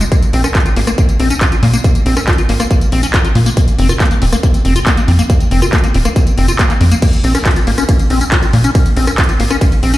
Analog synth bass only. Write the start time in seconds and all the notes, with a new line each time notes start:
0.33 A#1
0.76 G#1
1.20 A#1
1.63 A#2
2.06 A#1
2.49 G#1
2.92 A#1
3.35 A#2
3.79 F1
4.22 D#1
4.65 F1
5.08 F2
5.51 F1
5.94 D#1
6.38 F1
6.81 F2
7.24 A#1
7.67 G#1
8.10 A#1
8.53 A#2
8.97 A#1
9.40 G#1
9.83 A#1